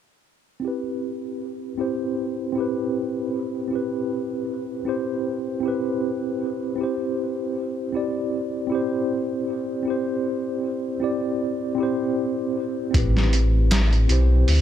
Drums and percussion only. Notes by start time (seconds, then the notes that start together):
12.94 kick, closed hi-hat
13.17 snare
13.33 closed hi-hat
13.71 snare, closed hi-hat
13.93 closed hi-hat
14.09 closed hi-hat
14.48 open hi-hat